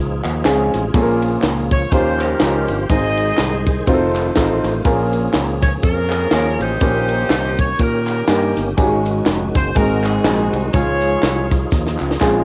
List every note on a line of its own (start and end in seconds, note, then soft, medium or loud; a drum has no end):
0.00 0.20 C#2 medium
0.00 0.91 F3 medium
0.00 0.90 D#4 medium
0.00 2.85 F4 medium
0.00 1.88 G#4 medium
0.24 0.42 D#2 loud
0.24 clap medium
0.24 ride medium
0.24 tambourine medium
0.45 0.69 C#2 loud
0.45 0.80 G#3 medium
0.45 0.81 C4 medium
0.45 0.81 C#4 medium
0.45 0.81 F4 medium
0.45 0.81 G#4 loud
0.45 snare loud
0.45 clap loud
0.45 ride medium
0.45 tambourine loud
0.74 0.91 A1 medium
0.74 snare soft
0.74 ride medium
0.74 tambourine soft
0.94 1.35 A#1 loud
0.94 1.68 A#2 medium
0.94 2.88 F3 medium
0.94 1.91 A#3 medium
0.94 1.63 A#3 medium
0.94 1.63 C#4 medium
0.94 1.63 F4 medium
0.94 1.63 G#4 medium
0.94 1.02 A4 medium
0.94 kick loud
0.94 ride medium
0.94 tambourine medium
1.02 1.66 A#4 loud
1.22 ride medium
1.22 tambourine medium
1.42 1.85 C#2 medium
1.42 snare loud
1.42 clap loud
1.42 ride medium
1.42 tambourine medium
1.71 1.91 C#5 loud
1.71 kick loud
1.71 ride medium
1.71 tambourine medium
1.91 2.33 D#2 loud
1.91 2.65 D#3 medium
1.91 2.32 C#4 medium
1.91 2.33 D#4 medium
1.91 2.86 F4 medium
1.91 2.33 F4 medium
1.91 2.88 G4 medium
1.91 2.19 G4 medium
1.91 2.33 G4 medium
1.91 2.20 C5 loud
1.91 4.82 C5 medium
1.91 2.33 C5 medium
1.91 kick loud
1.91 ride medium
1.91 tambourine medium
2.20 2.86 C#4 medium
2.20 2.86 G4 medium
2.20 2.69 A#4 loud
2.20 clap medium
2.20 ride medium
2.20 tambourine medium
2.40 2.65 C#2 loud
2.40 2.76 C#4 medium
2.40 2.76 D#4 medium
2.40 2.76 F4 medium
2.40 2.76 G4 medium
2.40 2.77 A#4 medium
2.40 snare loud
2.40 clap medium
2.40 ride medium
2.40 tambourine loud
2.68 2.87 G1 loud
2.68 ride medium
2.68 tambourine medium
2.89 3.31 G#1 loud
2.89 3.63 G#2 medium
2.89 4.84 D#3 medium
2.89 3.86 G#3 medium
2.89 3.58 G#3 medium
2.89 3.58 C4 medium
2.89 3.58 D#4 medium
2.89 3.86 G#4 medium
2.89 3.58 G#4 medium
2.89 3.84 G#4 medium
2.89 3.58 C5 medium
2.89 3.84 C5 medium
2.89 3.84 D#5 loud
2.89 kick loud
2.89 ride medium
2.89 tambourine medium
3.17 ride medium
3.17 tambourine medium
3.38 3.81 C2 loud
3.38 snare loud
3.38 clap loud
3.38 ride medium
3.38 tambourine loud
3.66 kick loud
3.66 snare soft
3.66 ride medium
3.66 tambourine medium
3.86 4.29 F1 loud
3.86 4.85 A3 medium
3.86 4.28 C4 loud
3.86 4.28 D#4 medium
3.86 4.28 F4 medium
3.86 4.85 F4 medium
3.86 3.94 F#4 medium
3.86 4.28 C5 loud
3.86 kick loud
3.86 ride medium
3.86 tambourine medium
3.94 4.31 A4 medium
4.16 clap medium
4.16 ride medium
4.16 tambourine medium
4.36 4.61 A1 medium
4.36 4.72 C4 medium
4.36 4.72 D#4 medium
4.36 4.72 F4 medium
4.36 4.72 A4 medium
4.36 4.72 C5 loud
4.36 kick medium
4.36 snare loud
4.36 clap loud
4.36 ride medium
4.36 tambourine loud
4.64 4.82 A1 loud
4.64 snare soft
4.64 ride medium
4.64 tambourine soft
4.84 5.27 A#1 loud
4.84 5.59 A#2 medium
4.84 6.79 F3 medium
4.84 8.73 A#3 medium
4.84 5.53 A#3 medium
4.84 9.71 C#4 medium
4.84 5.54 C#4 medium
4.84 5.54 F4 medium
4.84 6.79 G#4 medium
4.84 5.54 G#4 medium
4.84 5.54 A#4 loud
4.84 kick loud
4.84 ride medium
4.84 tambourine medium
5.12 ride medium
5.12 tambourine medium
5.33 5.76 C#2 loud
5.33 snare loud
5.33 clap loud
5.33 ride medium
5.33 tambourine medium
5.61 5.72 C#5 loud
5.61 kick loud
5.61 snare soft
5.61 ride medium
5.61 tambourine medium
5.82 6.25 F2 loud
5.82 6.78 C#4 medium
5.82 6.78 F4 medium
5.82 6.57 A#4 loud
5.82 kick loud
5.82 ride medium
5.82 tambourine medium
6.10 clap medium
6.10 ride medium
6.10 tambourine medium
6.31 6.56 D#2 loud
6.31 6.68 A#3 medium
6.31 6.68 C#4 medium
6.31 6.68 F4 medium
6.31 6.68 G#4 medium
6.31 6.68 C#5 medium
6.31 snare loud
6.31 clap loud
6.31 ride medium
6.31 tambourine loud
6.60 6.78 A1 loud
6.60 7.55 D#4 medium
6.60 7.55 G4 medium
6.60 7.59 C5 loud
6.60 ride medium
6.60 tambourine soft
6.81 7.23 A#1 loud
6.81 7.55 A#2 medium
6.81 10.70 D#3 medium
6.81 7.50 A#3 medium
6.81 7.50 C#4 medium
6.81 7.50 D#4 medium
6.81 8.76 G4 medium
6.81 7.50 G4 medium
6.81 7.50 A#4 medium
6.81 kick loud
6.81 ride medium
6.81 tambourine medium
7.08 ride medium
7.08 tambourine medium
7.30 7.72 C2 loud
7.30 snare loud
7.30 clap loud
7.30 ride medium
7.30 tambourine medium
7.58 7.80 C#5 loud
7.58 kick loud
7.58 ride medium
7.58 tambourine medium
7.79 8.21 A#2 medium
7.79 8.27 C#4 medium
7.79 8.27 G4 medium
7.79 8.29 A#4 loud
7.79 kick loud
7.79 ride medium
7.79 tambourine medium
8.07 clap medium
8.07 ride medium
8.07 tambourine medium
8.28 8.52 G2 loud
8.28 8.64 A#3 medium
8.28 8.74 C#4 medium
8.28 8.64 C#4 medium
8.28 8.64 D#4 medium
8.28 8.74 G4 medium
8.28 8.64 G4 medium
8.28 8.64 A#4 medium
8.28 8.65 A#4 medium
8.28 snare loud
8.28 clap loud
8.28 ride medium
8.28 tambourine loud
8.57 8.75 G1 medium
8.57 snare soft
8.57 ride medium
8.57 tambourine medium
8.77 9.20 G#1 loud
8.77 9.51 G#2 medium
8.77 9.46 G#3 medium
8.77 10.72 G#3 medium
8.77 9.46 C#4 medium
8.77 9.46 D#4 medium
8.77 9.75 F#4 medium
8.77 9.46 F#4 medium
8.77 8.85 G4 medium
8.77 kick loud
8.77 ride medium
8.77 tambourine medium
8.84 9.49 G#4 medium
9.05 ride medium
9.05 tambourine medium
9.26 9.50 F1 loud
9.26 snare loud
9.26 clap loud
9.26 ride medium
9.26 tambourine loud
9.54 9.73 F#1 medium
9.54 9.75 C5 loud
9.54 kick loud
9.54 snare soft
9.54 ride medium
9.54 tambourine medium
9.75 10.18 G#1 loud
9.75 10.49 G#2 medium
9.75 10.16 G#3 medium
9.75 9.82 A#3 medium
9.75 10.16 D#4 medium
9.75 10.05 D#4 medium
9.75 12.44 D#4 medium
9.75 10.16 F#4 medium
9.75 10.71 F#4 medium
9.75 10.74 F#4 medium
9.75 10.17 G#4 medium
9.75 10.05 A#4 loud
9.75 kick loud
9.75 ride medium
9.75 tambourine medium
9.81 10.19 C4 medium
10.04 10.71 C4 medium
10.04 10.71 D#4 medium
10.04 10.54 G#4 medium
10.04 clap medium
10.04 ride medium
10.04 tambourine medium
10.24 10.49 A#1 loud
10.24 10.61 G#3 medium
10.24 10.60 C4 medium
10.24 10.61 D#4 medium
10.24 10.61 F#4 medium
10.24 10.61 G#4 medium
10.24 snare loud
10.24 clap loud
10.24 ride medium
10.24 tambourine loud
10.53 10.71 C2 loud
10.53 ride medium
10.53 tambourine soft
10.73 11.16 C#2 loud
10.73 11.48 C#3 medium
10.73 12.44 F3 medium
10.73 11.43 G#3 medium
10.73 11.43 C#4 medium
10.73 12.44 F4 medium
10.73 11.68 F4 medium
10.73 11.43 F4 medium
10.73 12.44 G#4 medium
10.73 11.68 G#4 medium
10.73 11.43 G#4 medium
10.73 11.68 C#5 loud
10.73 kick loud
10.73 ride medium
10.73 tambourine medium
11.01 ride medium
11.01 tambourine medium
11.23 11.65 C2 loud
11.23 snare loud
11.23 clap loud
11.23 ride medium
11.23 tambourine loud
11.51 kick loud
11.51 snare soft
11.51 ride medium
11.51 tambourine medium
11.71 11.96 D#2 loud
11.71 kick loud
11.71 snare medium
11.71 tambourine medium
11.87 snare medium
11.99 12.18 C#2 loud
11.99 clap medium
11.99 tambourine medium
12.11 snare medium
12.20 12.44 A#1 loud
12.20 12.44 G#3 medium
12.20 12.44 C4 medium
12.20 12.44 C#4 medium
12.20 12.44 F4 medium
12.20 12.44 G#4 medium
12.20 kick medium
12.20 snare loud
12.20 clap loud
12.20 tambourine loud